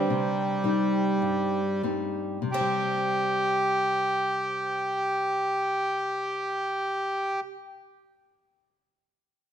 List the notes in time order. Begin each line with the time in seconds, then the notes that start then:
Already playing: G3 C4
0.10 C3
0.64 G3 C4 D#4
1.22 G2
1.83 G3 C4 D#4
2.42 C3
2.52 C4 G4
2.61 G3